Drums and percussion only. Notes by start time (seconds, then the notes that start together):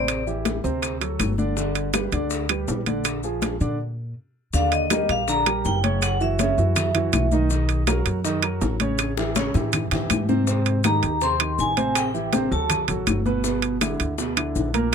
0.08 high bongo, high conga, high timbale, claves, maracas
0.27 high bongo, high conga, maracas
0.45 high bongo, high conga, high timbale, maracas
0.64 high bongo, high conga, maracas
0.82 high bongo, high conga, high timbale, claves, maracas
1.01 high bongo, high conga, high timbale, maracas
1.19 high bongo, low bongo, high conga, high timbale, claves, maracas
1.38 high conga, maracas
1.57 high bongo, maracas
1.75 high bongo, high conga, high timbale, maracas
1.93 high bongo, high conga, high timbale, claves, maracas
2.12 high bongo, high conga, high timbale, maracas
2.30 high bongo, high conga, maracas
2.49 high bongo, high conga, high timbale, claves, maracas
2.68 high bongo, low bongo, high conga, low timbale, maracas
2.86 high conga, high timbale, maracas
3.05 high bongo, high conga, high timbale, claves, maracas
3.23 high bongo, high conga, maracas
3.42 high bongo, high conga, high timbale, maracas
3.61 high bongo, high conga, maracas
4.53 high bongo, high conga, maracas
4.72 high bongo, high conga, high timbale, maracas
4.90 high bongo, high conga, high timbale, claves, maracas
5.09 high bongo, high conga, high timbale, maracas
5.28 high bongo, high conga, maracas
5.46 high bongo, high conga, high timbale, claves, maracas
5.65 high bongo, low bongo, high conga, maracas
5.84 high conga, high timbale, maracas
6.02 high bongo, high conga, high timbale, claves, maracas
6.20 high bongo, high conga, maracas
6.39 high bongo, high conga, high timbale, maracas
6.58 high bongo, high conga, maracas
6.76 high bongo, high conga, low conga, high timbale, claves, maracas
6.95 high bongo, high conga, low conga, high timbale, maracas
7.13 high bongo, low bongo, high conga, high timbale, claves, maracas
7.32 high conga, maracas
7.50 high bongo, maracas
7.69 high bongo, high conga, high timbale, maracas
7.87 high bongo, high conga, high timbale, claves, maracas
8.06 high bongo, high conga, high timbale, maracas
8.24 high bongo, high conga, maracas
8.42 high bongo, high conga, high timbale, claves, maracas
8.61 high bongo, low bongo, high conga, low timbale, maracas
8.80 high conga, high timbale, maracas
8.98 high bongo, high conga, high timbale, claves, maracas
9.17 high bongo, high conga, maracas
9.36 high bongo, high conga, high timbale, maracas
9.54 high bongo, maracas
9.73 low bongo, high conga, low conga, high timbale, claves, maracas
9.91 low bongo, high conga, low conga, high timbale, maracas
10.10 low bongo, high conga, high timbale, claves, maracas
10.29 low bongo, high conga, maracas
10.47 high bongo, maracas
10.66 high bongo, high conga, high timbale, maracas
10.84 high bongo, high conga, high timbale, claves, maracas
11.03 high bongo, high conga, high timbale, maracas
11.21 high bongo, high conga, maracas
11.40 high bongo, high conga, high timbale, claves, maracas
11.59 high bongo, low bongo, high conga, maracas
11.77 high conga, high timbale, maracas
11.95 high bongo, high conga, high timbale, claves, maracas
12.14 high bongo, high conga, maracas
12.33 high bongo, high conga, high timbale, maracas
12.51 high bongo, high conga, maracas
12.70 high bongo, high conga, low conga, high timbale, claves, maracas
12.88 high bongo, high conga, low conga, high timbale, maracas
13.07 high bongo, low bongo, high conga, high timbale, claves, maracas
13.26 high conga, maracas
13.44 high bongo, high conga, maracas
13.62 high conga, high timbale, maracas
13.81 high bongo, high conga, high timbale, claves, maracas
14.00 high bongo, high conga, high timbale, maracas
14.18 high bongo, high conga, maracas
14.37 high bongo, high conga, high timbale, claves, maracas
14.55 high bongo, low bongo, high conga, maracas
14.74 high conga, high timbale, maracas